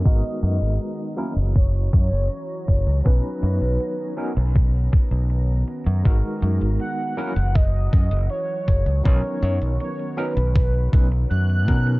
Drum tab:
HH |--xxx-xxx-xxx-xx|x-xxx-xxx-xxx-xx|x-xxx-xxx-xxx-xx|xxxxxxxxxxxxxxxx|
BD |o-------o-o---o-|o-------o-o-----|o-------o-o---o-|o-------o-o---o-|